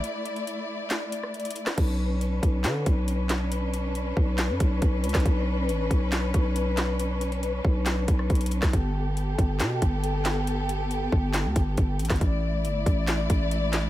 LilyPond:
<<
  \new Staff \with { instrumentName = "String section" } { \time 4/4 \key b \minor \tempo 4 = 138 <a e' d''>1 | <cis' d' b'>1~ | <cis' d' b'>1~ | <cis' d' b'>1~ |
<cis' d' b'>1 | <b g' a'>1~ | <b g' a'>1 | <a e' d''>1 | }
  \new Staff \with { instrumentName = "808-style bass" } { \clef bass \time 4/4 \key b \minor r1 | b,,4. b,,8 d8 b,,4.~ | b,,4. b,,8. fis,16 b,,8 b,,8 cis,16 b,,16 | b,,4 a,,8 b,,4 b,,4.~ |
b,,4. b,,4 b,,8 b,,8. b,,16 | g,,4. g,,8 b,8 g,,4.~ | g,,4. g,,8. d,16 g,,8 g,,8 a,,16 g,,16 | a,,4 g,,8 a,,4 a,,4. | }
  \new DrumStaff \with { instrumentName = "Drums" } \drummode { \time 4/4 hh8 hh16 hh16 hh4 <hc hh sn>8 hh16 ss16 hh32 hh32 hh32 hh32 <hh hho>16 <hc hh ss sn>16 | <cymc hh bd>4 hh8 <hh bd>8 <hc hh sn>8 <hh bd>8 hh8 <hc hh sn>8 | hh8 hh8 hh8 bd8 <hc hh sn>8 <hh bd>8 <hh bd>8 hh32 hh32 <hc hh bd ss sn>32 hh32 | <hh bd>4 hh8 <hh bd>8 <hc hh sn>8 <hh bd>8 hh8 <hc hh sn>8 |
hh8 hh16 hh16 hh8 bd8 <hc hh sn>8 <hh bd>16 ss16 <hh bd>32 hh32 hh32 hh32 <hh hho>16 <hc hh bd ss sn>16 | <hh bd>4 hh8 <hh bd>8 <hc hh sn>8 <hh bd>8 hh8 <hc hh sn>8 | hh8 hh8 hh8 bd8 <hc hh sn>8 <hh bd>8 <hh bd>8 hh32 hh32 <hc hh bd ss sn>32 hh32 | <hh bd>4 hh8 <hh bd>8 <hc hh sn>8 <hh bd>8 hh8 <hc hh sn>8 | }
>>